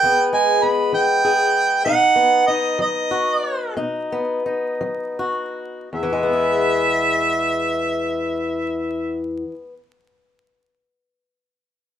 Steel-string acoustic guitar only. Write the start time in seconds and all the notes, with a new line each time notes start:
Already playing: G#3 G#4
0.03 E2 B3
0.33 G#3
0.63 B3
0.92 E3
1.25 G#4
1.86 B2 D#4
2.16 B3
2.48 D#4
2.79 F#3
3.11 F#4
3.77 B2 D#4
4.12 B3
4.46 D#4
4.81 F#3
5.19 F#4
5.93 E2
6.03 E3
6.13 G#3
6.23 B3
6.33 G#4